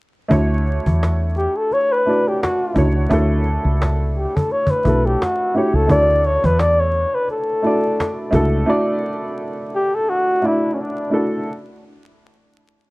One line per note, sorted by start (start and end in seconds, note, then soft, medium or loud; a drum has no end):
0.29 0.78 D2 medium
0.29 1.42 A3 medium
0.29 1.42 D4 medium
0.29 1.43 E4 medium
0.29 1.43 F#4 medium
0.29 1.44 C#5 medium
0.29 cajon bass loud
0.66 cajon slap soft
0.86 1.46 E2 medium
0.86 cajon bass medium
1.03 cajon slap medium
1.36 1.58 G4 medium
1.36 cajon slap soft
1.57 1.75 A4 loud
1.71 1.93 C#5 loud
1.71 cajon slap soft
1.92 2.30 B4 loud
2.06 2.63 A3 medium
2.06 2.63 D4 medium
2.06 2.64 E4 medium
2.06 2.64 F#4 medium
2.06 2.65 D5 medium
2.06 cajon slap soft
2.28 2.42 G4 medium
2.43 2.92 F#4 medium
2.43 cajon slap loud
2.43 cajon slap medium
2.74 3.06 C#2 medium
2.74 3.03 A3 medium
2.74 3.04 D4 medium
2.74 3.04 E4 medium
2.74 3.05 F#4 medium
2.74 3.05 C#5 medium
2.74 cajon bass medium
2.96 cajon slap soft
3.09 3.57 D2 loud
3.09 4.22 A3 medium
3.09 4.22 D4 medium
3.09 4.23 E4 medium
3.09 4.23 F#4 medium
3.09 cajon bass loud
3.13 4.24 A4 medium
3.46 cajon slap soft
3.65 4.25 C#2 medium
3.82 cajon slap loud
3.82 cajon slap medium
4.14 4.37 G4 medium
4.14 cajon slap soft
4.36 4.53 A4 medium
4.36 cajon bass medium
4.50 4.72 C#5 loud
4.50 cajon slap soft
4.67 5.07 B4 medium
4.67 cajon bass medium
4.84 5.15 B1 medium
4.84 5.41 A3 medium
4.84 5.42 D4 soft
4.84 5.43 E4 medium
4.84 5.43 F#4 medium
4.84 5.43 A4 medium
4.84 cajon bass medium
5.06 5.23 G4 medium
5.22 5.58 F#4 medium
5.22 cajon slap loud
5.22 cajon slap medium
5.54 5.83 A3 medium
5.54 5.83 D4 medium
5.54 5.83 E4 medium
5.54 5.84 F#4 medium
5.54 5.76 G4 medium
5.54 5.85 C#5 medium
5.54 cajon slap soft
5.73 5.87 C#2 medium
5.73 5.90 A4 medium
5.73 cajon slap soft
5.87 6.36 D2 medium
5.87 7.00 A3 medium
5.87 7.01 D4 medium
5.87 7.01 E4 medium
5.87 7.02 F#4 medium
5.87 6.27 D5 loud
5.87 cajon bass loud
5.91 7.02 A4 medium
6.24 6.47 C#5 loud
6.24 cajon slap soft
6.44 7.04 E2 medium
6.44 6.61 B4 medium
6.44 cajon bass medium
6.59 6.81 D5 loud
6.59 cajon slap loud
6.59 cajon slap medium
6.80 7.16 C#5 medium
6.93 cajon slap soft
7.14 7.29 B4 medium
7.28 8.30 A4 medium
7.28 cajon slap soft
7.62 8.20 A3 medium
7.62 8.20 D4 medium
7.62 8.21 E4 medium
7.62 8.21 F#4 medium
7.62 cajon slap soft
7.67 8.22 D5 medium
8.00 cajon slap loud
8.00 cajon slap medium
8.31 8.63 C#2 medium
8.31 8.60 A3 medium
8.31 8.61 D4 medium
8.31 8.62 E4 medium
8.31 8.62 F#4 medium
8.31 8.62 A4 medium
8.31 cajon bass medium
8.66 9.79 A3 medium
8.66 9.80 D4 medium
8.66 9.80 E4 medium
8.66 9.80 F#4 medium
8.66 9.81 D5 loud
9.75 9.96 G4 medium
9.95 10.11 A4 medium
10.09 10.47 F#4 loud
10.41 10.99 A3 medium
10.41 11.00 D4 medium
10.41 11.00 E4 medium
10.41 11.01 F#4 medium
10.41 11.01 D5 medium
10.46 10.75 E4 medium
10.74 10.82 C#4 medium
10.80 11.33 D4 medium
11.10 11.40 A3 medium
11.10 11.40 D4 medium
11.10 11.41 E4 medium
11.10 11.41 F#4 medium
11.10 11.41 A4 medium